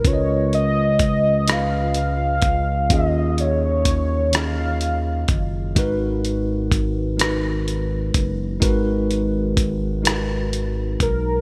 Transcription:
<<
  \new Staff \with { instrumentName = "Soft synth lead" } { \time 6/8 \key gis \dorian \tempo 4. = 42 cis''8 dis''4 eis''8 eis''4 | dis''8 cis''4 eis''4 r8 | r2. | r2 r8 ais'8 | }
  \new Staff \with { instrumentName = "Tine electric piano" } { \time 6/8 \key gis \dorian <cis cis' eis' b' cis'' dis''>4. <cis cis' eis' b' dis''>4. | <dis cis' eis' gis' dis''>4. <dis cis' eis' gis'>4. | <gis dis' fis' ais' b'>4. <gis dis' fis' ais' b'>4. | <gis dis' fis' ais' b'>4. <gis dis' fis' ais' b'>4. | }
  \new Staff \with { instrumentName = "Analog synth bass" } { \clef bass \time 6/8 \key gis \dorian cis,2~ cis,8 cis,8 | dis,2~ dis,8 fis,,8 | gis,,2~ gis,,8 fis,,8 | gis,,2~ gis,,8 b,,8 | }
  \new DrumStaff \with { instrumentName = "Drums" } \drummode { \time 6/8 <hh bd>8 hh8 <hh bd>8 <hh ss>8 hh8 <hh bd>8 | <hh bd>8 hh8 <hh bd>8 <hh ss>8 hh8 <hh bd>8 | <hh bd>8 hh8 <hh bd>8 <hh ss>8 hh8 <hh bd>8 | <hh bd>8 hh8 <hh bd>8 <hh ss>8 hh8 <hh bd>8 | }
>>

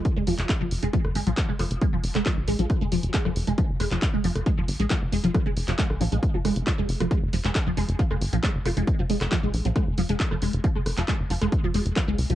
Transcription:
<<
  \new Staff \with { instrumentName = "Synth arpeggio sound" } { \clef bass \time 4/4 \key f \minor \tempo 4 = 136 r16 aes16 f16 r16 aes16 f16 r16 aes16 f16 r16 aes16 f16 r16 aes16 f16 r16 | aes16 f16 r16 aes16 f16 r16 aes16 f16 r16 aes16 f16 r16 aes16 f16 r16 aes16 | f16 r16 aes16 f16 r16 aes16 f16 r16 aes16 f16 r16 aes16 f16 r16 aes16 f16 | f16 aes16 r16 f16 aes16 r16 f16 aes16 r16 f16 aes16 r16 f16 aes16 r16 f16 |
aes16 r16 f16 aes16 r16 f16 aes16 r16 f16 aes16 r16 f16 aes16 r16 f16 aes16 | r16 f16 aes16 r16 f16 aes16 r16 f16 aes16 r16 f16 aes16 r16 f16 aes16 r16 | f16 aes16 r16 f16 aes16 r16 f16 aes16 r16 f16 aes16 r16 f16 aes16 r16 f16 | }
  \new Staff \with { instrumentName = "Analog synth bass" } { \clef bass \time 4/4 \key f \minor r16 f,,16 f,,16 f,,16 r16 f,,16 f,,16 f,,16 r16 f,,16 g,,16 bes,,16 r16 f,,16 f,,16 f,,16 | r16 f,,16 f,,16 f,,16 r16 bes,,16 bes,,16 bes,,16 r16 f,,16 f,,16 f,,16 r16 f,,16 f,,16 f,,16 | r16 f,,16 f,,16 f,,16 r16 f,,16 f,,16 f,,16 r16 f,,16 g,,16 bes,,16 r16 f,,16 f,,16 f,,16 | r16 f,,16 f,,16 f,,16 r16 bes,,16 bes,,16 bes,,16 r16 f,,16 f,,16 f,,16 r16 f,,16 f,,16 f,,16 |
r16 f,,16 f,,16 f,,16 r16 f,,16 f,,16 f,,16 r16 f,,16 g,,16 bes,,16 r16 f,,16 f,,16 f,,16 | r16 f,,16 f,,16 f,,16 r16 bes,,16 bes,,16 bes,,16 r16 f,,16 f,,16 f,,16 r16 f,,16 f,,16 f,,16 | r16 f,,16 f,,16 f,,16 r16 f,,16 f,,16 f,,16 r16 f,,16 f,,16 f,,16 r16 c,16 c,16 c,16 | }
  \new DrumStaff \with { instrumentName = "Drums" } \drummode { \time 4/4 <hh bd>8 hho16 <hc hh>16 <hc hh bd ss>8 hho16 hh16 <hh bd>16 ss16 hho16 hh16 <hc hh bd>8 <hho ss>16 hh16 | <hh bd>8 hho16 <hc hh ss>16 <hc hh bd>8 hho16 hh16 <hh bd ss>8 hho16 hh16 <hc hh bd>16 ss16 hho16 hh16 | <hh bd>8 <hho ss>16 <hc hh>16 <hc hh bd>8 hho16 <hh ss>16 <hh bd>8 hho16 hh16 <hc hh bd ss>8 hho16 hh16 | <hh bd ss>8 hho16 <hc hh>16 <hc hh bd>16 ss16 hho16 hh16 <hh bd>8 <hho ss>16 hh16 <hc hh bd>8 hho16 <hh ss>16 |
<hh bd>8 hho16 <hc hh>16 <hc hh bd ss>8 hho16 hh16 <hh bd>16 ss16 hho16 hh16 <hc hh bd>8 <hho ss>16 hh16 | <hh bd>8 hho16 <hc hh ss>16 <hc hh bd>8 hho16 hh16 <hh bd ss>8 hho16 hh16 <hc hh bd>16 ss16 hho16 hh16 | <hh bd>8 <hho ss>16 <hc hh>16 <hc hh bd>8 hho16 <hh ss>16 <hh bd>8 hho16 hh16 <hc hh bd ss>8 hho16 hh16 | }
>>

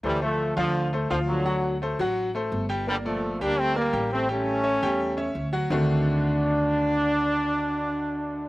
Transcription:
<<
  \new Staff \with { instrumentName = "Upright piano" } { \time 4/4 \key g \dorian \tempo 4 = 169 <a a' c''>8 <a a' c''>4 <f f' f''>4 <a a' c''>8 <f f' f''>4 | <fis fis' fis''>4 <a a' c''>8 <fis fis' fis''>4 <a a' c''>4 <g g' g''>8 | <bes bes' d''>8 <bes, a' d''>4 <g g' g''>4 <bes bes' d''>8 <g g' g''>4 | <g g' g''>4 <cis' cis'' e''>8 <g g' g''>4 <cis' cis'' e''>4 <fis fis' fis''>8 |
<d ees a c' d' fis'>1~ | <d ees a c' d' fis'>1 | }
  \new Staff \with { instrumentName = "Trombone section" } { \clef bass \time 4/4 \key g \dorian <e g>8 <f a>4 <d f>4 r8 <d f>8 <d fis>8~ | <d fis>4 r2. | <d g>8 <f a>4 <bes d'>8 <a c'>8 <g bes>4 <a c'>8 | <a cis'>2. r4 |
d'1~ | d'1 | }
  \new Staff \with { instrumentName = "Upright bass" } { \clef bass \time 4/4 \key g \dorian d,4. d,4. d,4~ | d,4. a,,4. g,,4~ | g,,4. d,4. a,,4~ | a,,4. e,4. d,4 |
d,1~ | d,1 | }
>>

